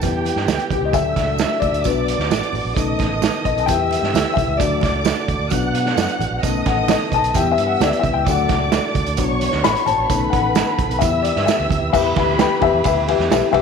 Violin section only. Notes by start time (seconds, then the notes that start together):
0.02 G4 G5
0.94 E5 E6
1.83 D5 D6
2.74 D#5 D#6
3.67 E5 E6
4.59 D5 D6
5.50 F#5 F#6
6.40 D#5 D#6
7.34 E5 E6
8.27 D5 D6
9.19 C#5 C#6
10.10 B4 B5
11.01 E5 E6
11.93 B4 B5